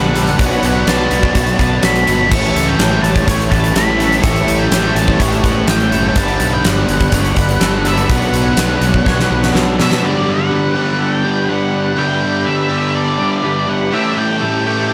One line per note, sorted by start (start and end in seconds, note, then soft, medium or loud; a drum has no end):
0.00 0.35 A#1 medium
0.00 0.14 G2 medium
0.00 0.38 G2 medium
0.00 0.14 D3 medium
0.00 0.38 D3 medium
0.00 0.14 G3 loud
0.00 0.38 G3 medium
0.00 0.39 B3 medium
0.00 0.39 D4 medium
0.00 0.35 G4 medium
0.00 0.14 A4 medium
0.00 2.27 D5 medium
0.00 0.37 F#5 medium
0.00 0.40 F#5 medium
0.00 0.37 B5 medium
0.15 0.39 G2 medium
0.15 0.38 D3 medium
0.15 0.38 G3 medium
0.15 0.39 A4 medium
0.15 closed hi-hat medium
0.27 closed hi-hat soft
0.38 0.61 B1 medium
0.38 2.05 B2 medium
0.38 0.86 B2 medium
0.38 2.06 F#3 loud
0.38 0.87 F#3 loud
0.38 2.06 B3 medium
0.38 0.88 B3 medium
0.38 0.89 D4 loud
0.38 2.29 F#4 medium
0.38 0.62 B4 medium
0.38 6.12 C#5 medium
0.38 0.88 F#5 medium
0.38 2.29 B5 medium
0.38 kick loud
0.38 closed hi-hat loud
0.51 closed hi-hat soft
0.63 0.85 B1 medium
0.63 1.11 B4 medium
0.63 closed hi-hat medium
0.87 1.09 B1 medium
0.87 1.34 B2 medium
0.87 1.35 F#3 medium
0.87 1.36 B3 medium
0.87 1.37 D4 medium
0.87 1.60 A5 medium
0.87 snare loud
0.87 closed hi-hat loud
1.11 1.33 B1 medium
1.11 closed hi-hat medium
1.23 kick medium
1.35 1.57 B1 medium
1.35 1.81 B2 medium
1.35 1.61 F#3 medium
1.35 1.59 B3 loud
1.35 1.58 D4 medium
1.35 1.59 C#5 medium
1.35 kick medium
1.35 closed hi-hat medium
1.46 closed hi-hat soft
1.59 1.81 B1 medium
1.59 1.82 F#3 medium
1.59 1.83 B3 medium
1.59 1.84 D4 medium
1.59 1.83 B4 medium
1.59 1.85 A5 medium
1.59 kick medium
1.59 closed hi-hat medium
1.82 2.05 B1 medium
1.82 2.29 B2 medium
1.82 2.30 F#3 medium
1.82 2.30 B3 medium
1.82 2.31 D4 medium
1.82 2.06 A4 medium
1.82 2.32 B5 medium
1.82 snare loud
1.82 closed hi-hat medium
1.95 closed hi-hat soft
2.07 2.29 G1 medium
2.07 2.31 B2 medium
2.07 2.30 F#3 medium
2.07 2.30 B3 medium
2.07 2.30 A4 medium
2.07 closed hi-hat medium
2.31 2.53 A1 medium
2.31 3.27 A2 medium
2.31 3.98 A2 medium
2.31 2.79 E3 medium
2.31 3.99 E3 medium
2.31 2.80 G3 medium
2.31 2.81 A3 loud
2.31 3.98 A3 loud
2.31 2.81 C#4 loud
2.31 2.82 E4 loud
2.31 8.06 G4 medium
2.31 2.54 A4 medium
2.31 6.13 E5 medium
2.31 6.13 A5 medium
2.31 2.69 C#6 loud
2.31 kick loud
2.31 crash medium
2.44 closed hi-hat soft
2.54 2.77 C#2 medium
2.54 3.54 A4 medium
2.54 closed hi-hat medium
2.68 3.02 G5 loud
2.78 3.01 A1 medium
2.78 3.26 A2 medium
2.78 3.27 E3 medium
2.78 3.28 G3 medium
2.78 3.29 A3 medium
2.78 3.28 C#4 medium
2.78 3.29 E4 medium
2.78 snare loud
2.78 closed hi-hat medium
3.02 3.25 A1 medium
3.02 3.25 A5 medium
3.02 closed hi-hat medium
3.16 kick medium
3.16 closed hi-hat soft
3.27 3.49 A1 medium
3.27 3.75 A2 medium
3.27 3.74 E3 loud
3.27 3.53 G3 loud
3.27 3.49 A3 loud
3.27 3.51 C#4 loud
3.27 3.50 E4 loud
3.27 3.51 C#5 medium
3.27 kick loud
3.27 closed hi-hat medium
3.40 closed hi-hat soft
3.50 3.73 A1 medium
3.50 3.75 E3 medium
3.50 3.76 G3 medium
3.50 3.77 A3 medium
3.50 3.76 C#4 medium
3.50 3.77 E4 medium
3.50 3.75 B4 medium
3.50 3.76 A5 medium
3.50 kick medium
3.50 closed hi-hat medium
3.64 closed hi-hat soft
3.74 4.19 A1 medium
3.74 4.23 A2 medium
3.74 4.23 E3 medium
3.74 4.24 G3 medium
3.74 4.25 A3 medium
3.74 4.24 C#4 medium
3.74 4.25 E4 medium
3.74 3.98 A4 medium
3.74 4.22 B5 loud
3.74 snare loud
3.74 closed hi-hat loud
3.99 4.21 A2 medium
3.99 4.22 E3 medium
3.99 4.22 A3 medium
3.99 4.22 A4 medium
3.99 snare soft
3.99 closed hi-hat medium
4.12 closed hi-hat soft
4.22 4.45 A1 medium
4.22 4.95 A2 medium
4.22 5.90 A2 medium
4.22 5.91 E3 loud
4.22 4.70 E3 loud
4.22 4.72 G3 loud
4.22 5.90 A3 loud
4.22 4.72 C#4 loud
4.22 4.73 E4 loud
4.22 4.46 A4 loud
4.22 4.60 C#6 loud
4.22 kick loud
4.22 closed hi-hat loud
4.26 4.72 A3 loud
4.36 closed hi-hat soft
4.47 4.69 A1 medium
4.47 4.95 A4 medium
4.47 closed hi-hat medium
4.58 4.95 G5 medium
4.70 4.93 A1 medium
4.70 5.18 A2 medium
4.70 5.18 E3 medium
4.70 5.19 G3 medium
4.70 5.21 A3 medium
4.70 5.20 C#4 medium
4.70 5.20 E4 medium
4.70 snare loud
4.70 closed hi-hat loud
4.95 5.17 A1 medium
4.95 5.18 A5 medium
4.95 closed hi-hat medium
5.08 kick medium
5.19 5.41 A1 loud
5.19 5.67 A2 loud
5.19 5.66 E3 loud
5.19 5.45 G3 medium
5.19 5.42 A3 loud
5.19 5.43 C#4 loud
5.19 5.42 E4 loud
5.19 5.43 C#5 medium
5.19 kick medium
5.19 closed hi-hat medium
5.32 closed hi-hat soft
5.43 5.66 A1 medium
5.43 5.67 E3 medium
5.43 5.67 G3 medium
5.43 5.68 A3 medium
5.43 5.68 C#4 medium
5.43 5.69 E4 medium
5.43 5.67 B4 medium
5.43 5.69 F#5 medium
5.43 kick medium
5.43 closed hi-hat medium
5.66 5.90 A1 medium
5.66 6.14 A2 medium
5.66 6.14 E3 medium
5.66 6.15 G3 medium
5.66 6.15 A3 medium
5.66 6.15 C#4 medium
5.66 6.16 E4 medium
5.66 5.90 A4 medium
5.66 6.17 G5 loud
5.66 snare loud
5.66 closed hi-hat medium
5.80 closed hi-hat soft
5.91 6.14 F#1 medium
5.91 6.15 A2 medium
5.91 6.15 E3 medium
5.91 6.14 A3 medium
5.91 6.16 A4 medium
5.91 closed hi-hat medium
6.15 6.38 G1 medium
6.15 6.88 G2 loud
6.15 7.83 G2 medium
6.15 6.63 D3 medium
6.15 7.84 D3 medium
6.15 6.64 G3 loud
6.15 7.84 G3 loud
6.15 6.66 B3 loud
6.15 6.67 D4 loud
6.15 6.39 B4 medium
6.15 8.07 D5 medium
6.15 9.99 F#5 medium
6.15 6.54 A5 loud
6.15 9.99 B5 medium
6.15 kick loud
6.15 closed hi-hat medium
6.28 closed hi-hat soft
6.39 6.62 B1 medium
6.39 7.15 B4 medium
6.39 closed hi-hat medium
6.54 6.66 G5 medium
6.64 6.86 G1 medium
6.64 7.11 G2 medium
6.64 7.12 D3 medium
6.64 7.13 G3 medium
6.64 7.14 B3 medium
6.64 7.14 D4 medium
6.64 7.13 F#5 medium
6.64 snare loud
6.64 closed hi-hat medium
6.88 7.10 G1 medium
6.88 closed hi-hat medium
7.00 kick medium
7.00 closed hi-hat soft
7.12 7.34 G1 loud
7.12 7.61 G2 medium
7.12 7.58 D3 loud
7.12 7.38 G3 medium
7.12 7.37 B3 loud
7.12 7.36 D4 loud
7.12 7.36 C#5 medium
7.12 7.88 F#5 medium
7.12 kick medium
7.12 closed hi-hat medium
7.25 closed hi-hat soft
7.36 7.59 G1 medium
7.36 7.61 D3 medium
7.36 7.59 G3 medium
7.36 7.61 B3 medium
7.36 7.62 D4 medium
7.36 7.63 B4 medium
7.36 kick medium
7.36 closed hi-hat medium
7.49 closed hi-hat soft
7.60 8.05 G1 loud
7.60 8.08 G2 medium
7.60 8.07 D3 medium
7.60 8.08 G3 medium
7.60 8.09 B3 medium
7.60 8.10 D4 medium
7.60 7.83 A4 medium
7.60 snare loud
7.60 closed hi-hat loud
7.84 8.09 G2 medium
7.84 8.08 D3 medium
7.84 8.08 G3 medium
7.84 8.09 A4 medium
7.84 8.11 E5 medium
7.84 snare soft
7.84 closed hi-hat medium
7.97 closed hi-hat soft
8.08 8.31 B1 medium
8.08 8.55 B2 loud
8.08 9.77 B2 medium
8.08 8.56 F#3 loud
8.08 9.78 F#3 medium
8.08 8.57 B3 loud
8.08 9.77 B3 loud
8.08 10.01 D4 medium
8.08 8.58 D4 loud
8.08 8.32 B4 medium
8.08 10.02 C#5 medium
8.08 9.52 F#5 medium
8.08 kick loud
8.08 closed hi-hat loud
8.22 closed hi-hat soft
8.32 8.55 B1 medium
8.32 8.82 B4 medium
8.32 closed hi-hat medium
8.57 8.79 B1 medium
8.57 9.03 B2 medium
8.57 9.04 F#3 medium
8.57 9.05 B3 medium
8.57 9.06 D4 medium
8.57 snare loud
8.57 closed hi-hat loud
8.81 9.03 B1 medium
8.81 closed hi-hat medium
8.94 kick medium
9.04 9.28 B1 loud
9.04 9.52 B2 medium
9.04 9.31 F#3 medium
9.04 9.29 B3 medium
9.04 9.28 D4 loud
9.04 9.30 C#5 medium
9.04 kick medium
9.04 snare medium
9.20 snare medium
9.30 9.52 B1 medium
9.30 9.53 F#3 medium
9.30 9.54 B3 medium
9.30 9.55 D4 medium
9.30 9.54 B4 medium
9.43 snare medium
9.54 9.76 B1 medium
9.54 10.01 B2 medium
9.54 10.01 F#3 medium
9.54 10.02 B3 medium
9.54 10.02 D4 medium
9.54 9.77 A4 medium
9.54 snare medium
9.78 10.01 B2 medium
9.78 10.02 B2 medium
9.78 10.02 F#3 medium
9.78 10.01 B3 medium
9.78 10.02 A4 medium
9.78 10.03 E5 medium
9.78 snare loud
9.92 snare medium
10.02 11.23 G2 medium
10.02 10.77 G2 medium
10.02 11.23 D3 medium
10.02 10.75 D3 medium
10.02 11.25 G3 medium
10.02 10.75 G3 medium
10.02 11.24 B3 loud
10.02 11.24 D4 loud
10.02 10.75 G4 medium
10.02 14.94 G4 medium
10.02 13.89 D5 medium
10.02 10.29 D5 medium
10.02 13.89 B5 medium
10.26 10.51 D3 medium
10.26 10.53 G3 medium
10.26 11.02 F#5 medium
10.51 11.46 G2 medium
10.51 11.26 D3 medium
10.51 11.24 G3 medium
10.51 11.02 B4 medium
10.75 11.95 G2 medium
10.75 11.96 D3 medium
10.75 11.98 G3 medium
10.75 11.02 G4 medium
10.99 11.24 A4 medium
10.99 11.13 F#5 medium
11.13 11.50 G5 medium
11.23 11.47 G2 medium
11.23 11.48 D3 medium
11.23 11.50 G3 medium
11.23 11.47 B3 medium
11.23 11.51 D4 medium
11.23 11.97 G4 medium
11.48 11.95 G2 medium
11.48 11.96 D3 medium
11.48 11.98 G3 medium
11.48 11.97 B3 medium
11.48 11.99 D4 medium
11.48 11.97 B4 medium
11.48 11.98 F#5 medium
11.71 11.97 D3 medium
11.71 11.99 G3 medium
11.96 12.68 G2 medium
11.96 13.17 G2 medium
11.96 12.69 D3 medium
11.96 13.18 D3 medium
11.96 12.69 G3 medium
11.96 13.19 G3 medium
11.96 13.18 B3 medium
11.96 13.18 D4 medium
11.96 12.71 G4 medium
11.96 14.94 E5 medium
11.96 12.48 G5 loud
12.21 12.46 D3 medium
12.21 12.48 G3 medium
12.45 13.42 G2 medium
12.45 13.21 D3 medium
12.45 13.18 G3 medium
12.45 12.70 B4 medium
12.45 12.95 E5 medium
12.70 13.91 G2 medium
12.70 13.91 D3 medium
12.70 13.93 G3 medium
12.70 12.95 G4 medium
12.95 13.19 A4 medium
12.95 13.70 D5 medium
13.18 13.42 G2 medium
13.18 13.43 D3 medium
13.18 13.44 G3 medium
13.18 13.42 B3 medium
13.18 13.46 D4 medium
13.18 13.92 G4 medium
13.43 13.90 G2 medium
13.43 13.91 D3 medium
13.43 13.93 G3 medium
13.43 13.92 B3 medium
13.43 13.94 D4 medium
13.43 13.92 B4 medium
13.67 13.92 D3 medium
13.67 13.93 G3 medium
13.67 13.93 F#5 medium
13.91 14.67 A2 medium
13.91 14.94 A2 medium
13.91 14.94 E3 medium
13.91 14.66 E3 medium
13.91 14.94 G3 loud
13.91 14.65 A3 loud
13.91 14.16 A3 loud
13.91 14.94 C#4 loud
13.91 14.94 E4 loud
13.91 14.40 G4 medium
13.91 14.18 E5 loud
13.91 14.94 A5 medium
13.91 14.94 D6 medium
14.16 14.42 E3 medium
14.16 14.44 A3 medium
14.16 14.88 G5 loud
14.41 14.94 A2 medium
14.41 14.94 E3 medium
14.41 14.94 A3 medium
14.41 14.65 A4 medium
14.66 14.94 A2 medium
14.66 14.94 E3 medium
14.66 14.94 A3 medium
14.66 14.90 G4 medium
14.88 14.94 A4 medium
14.88 14.94 A5 loud